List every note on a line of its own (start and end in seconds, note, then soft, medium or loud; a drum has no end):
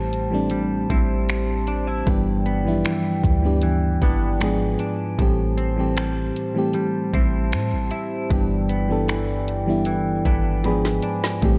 0.00 0.86 A1 loud
0.00 2.06 A2 medium
0.00 0.30 E3 medium
0.00 0.31 G3 medium
0.00 0.51 G3 medium
0.00 0.32 A3 medium
0.00 0.33 C4 medium
0.00 0.89 C4 medium
0.00 2.04 G4 medium
0.00 2.09 G4 medium
0.00 2.04 C5 medium
0.00 2.04 A5 medium
0.13 closed hi-hat medium
0.30 1.47 E3 medium
0.30 1.48 G3 medium
0.30 1.48 A3 medium
0.30 1.48 C4 medium
0.30 1.49 D4 medium
0.50 0.89 G3 medium
0.50 closed hi-hat medium
0.90 2.03 A1 loud
0.90 2.84 G3 medium
0.90 2.15 C4 medium
0.90 1.67 E4 medium
0.90 kick medium
0.90 closed hi-hat medium
1.29 finger snap loud
1.29 closed hi-hat medium
1.67 1.87 D4 medium
1.67 closed hi-hat medium
1.87 2.15 E4 medium
2.06 2.67 G1 loud
2.06 4.40 G2 medium
2.06 2.50 E3 medium
2.06 2.50 G3 medium
2.06 2.51 B3 medium
2.06 2.51 D4 medium
2.06 4.38 E4 medium
2.06 4.39 D5 medium
2.06 4.38 G5 medium
2.06 kick loud
2.06 closed hi-hat medium
2.10 2.52 G4 medium
2.46 4.01 B3 medium
2.46 closed hi-hat medium
2.64 2.84 A1 medium
2.64 3.23 E3 medium
2.64 2.72 F3 medium
2.64 3.24 B3 medium
2.64 3.24 D4 medium
2.64 3.25 E4 medium
2.72 3.27 G3 medium
2.85 3.62 E3 medium
2.85 finger snap loud
2.85 closed hi-hat medium
3.24 3.99 D2 loud
3.24 kick medium
3.24 closed hi-hat medium
3.42 4.40 E3 medium
3.42 4.41 G3 medium
3.42 4.41 B3 medium
3.42 4.42 D4 medium
3.42 4.42 G4 medium
3.62 4.01 E3 medium
3.62 closed hi-hat medium
4.02 4.77 G#1 loud
4.02 4.49 E3 medium
4.02 4.49 B3 medium
4.02 4.49 D4 medium
4.02 kick medium
4.02 closed hi-hat medium
4.40 5.18 G#2 medium
4.40 5.03 F3 medium
4.40 5.03 G#3 medium
4.40 5.04 B3 medium
4.40 5.04 D4 medium
4.40 5.18 F4 medium
4.40 5.05 G#4 medium
4.40 5.18 B4 medium
4.40 5.18 G#5 medium
4.40 finger snap loud
4.40 closed hi-hat medium
4.79 5.27 D4 medium
4.79 closed hi-hat medium
5.18 6.32 A1 loud
5.18 8.30 A2 medium
5.18 5.62 E3 medium
5.18 5.62 G3 medium
5.18 5.63 A3 medium
5.18 5.63 C4 medium
5.18 8.27 G4 medium
5.18 5.64 G4 medium
5.18 8.27 C5 medium
5.18 8.27 A5 medium
5.18 kick loud
5.18 closed hi-hat medium
5.57 7.13 C4 medium
5.57 closed hi-hat medium
5.76 6.35 E3 medium
5.76 6.35 G3 medium
5.76 6.36 A3 medium
5.76 6.36 C4 medium
5.76 6.37 G4 medium
5.97 6.74 G3 medium
5.97 finger snap loud
5.97 closed hi-hat medium
6.36 closed hi-hat medium
6.54 7.71 E3 medium
6.54 7.71 G3 medium
6.54 7.72 A3 medium
6.54 7.72 C4 medium
6.54 7.73 G4 medium
6.73 7.13 G3 medium
6.73 closed hi-hat medium
7.13 7.55 A1 loud
7.13 9.08 G3 medium
7.13 8.38 C4 medium
7.13 7.91 E4 medium
7.13 kick medium
7.13 closed hi-hat medium
7.52 7.74 A2 loud
7.52 finger snap loud
7.52 closed hi-hat medium
7.73 7.91 A1 medium
7.91 10.26 E4 medium
7.91 closed hi-hat medium
8.29 10.21 G1 loud
8.29 10.64 G2 medium
8.29 8.73 E3 medium
8.29 8.74 G3 medium
8.29 8.74 B3 medium
8.29 8.75 D4 medium
8.29 10.62 E4 medium
8.29 8.75 G4 medium
8.29 10.62 D5 medium
8.29 10.62 G5 medium
8.29 kick loud
8.29 closed hi-hat medium
8.69 10.25 B3 medium
8.69 closed hi-hat medium
8.88 9.46 E3 medium
8.88 9.47 G3 medium
8.88 9.47 B3 medium
8.88 9.48 D4 medium
8.88 9.48 A4 medium
9.08 9.85 E3 medium
9.08 finger snap loud
9.08 closed hi-hat medium
9.48 closed hi-hat medium
9.66 10.64 E3 medium
9.66 10.64 G3 medium
9.66 10.64 B3 medium
9.66 10.65 D4 medium
9.66 10.66 E4 medium
9.85 10.24 E3 medium
9.85 closed hi-hat medium
10.25 11.00 G#1 loud
10.25 10.72 E3 medium
10.25 10.72 B3 medium
10.25 10.73 D4 medium
10.25 kick medium
10.25 closed hi-hat medium
10.63 11.42 G#2 medium
10.63 11.26 F3 medium
10.63 11.27 G#3 medium
10.63 11.27 B3 medium
10.63 11.28 D4 medium
10.63 11.41 F4 medium
10.63 11.28 G#4 medium
10.63 11.41 B4 medium
10.63 11.41 G#5 medium
10.63 11.39 B5 medium
10.63 closed hi-hat medium
10.85 snare medium
11.03 11.50 D4 medium
11.03 closed hi-hat medium
11.24 snare medium
11.41 11.59 A1 loud
11.41 11.59 A2 medium
11.41 11.59 E3 medium
11.41 11.59 G3 medium
11.41 11.59 A3 medium
11.41 11.59 C4 medium
11.41 11.59 G4 medium
11.41 11.59 C5 medium
11.41 11.59 A5 medium
11.41 kick loud
11.41 closed hi-hat medium